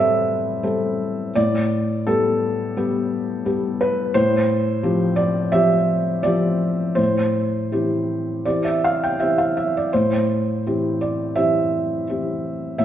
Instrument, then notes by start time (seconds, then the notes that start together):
felt piano
Already playing: A2 G3 C4 A4 B4 C5 D5 E5
0.63 G3 C4 A4
1.35 A2 D5
2.07 G3 B3 G4 A4
2.77 G3 B3 G4
3.45 G3 B3 G4
3.81 B4
4.14 A2 C5
4.83 F3 C4 G4
5.16 D5
5.52 F3 C4 G4 E5
6.23 F3 C4 G4 D5
6.95 A2 C5
7.72 E3 C4 G4
8.45 E3 C4 G4 D5
8.64 E5
8.84 F5
9.04 G5
9.20 E3 C4 G4 E5
9.38 F5
9.57 E5
9.77 D5
9.93 A2 C5
10.67 E3 C4 G4
11.01 D5
11.36 E3 C4 G4 E5
12.09 E3 C4 G4
12.78 A2 E5